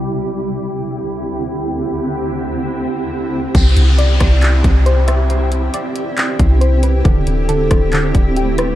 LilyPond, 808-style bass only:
\new Staff \with { instrumentName = "808-style bass" } { \clef bass \time 4/4 \key c \major \tempo 4 = 137 r1 | r1 | c,8 c,4 c,4 c,4.~ | c,4 r4. c,4. |
d,,8 d,,4 d,,4 d,,4. | }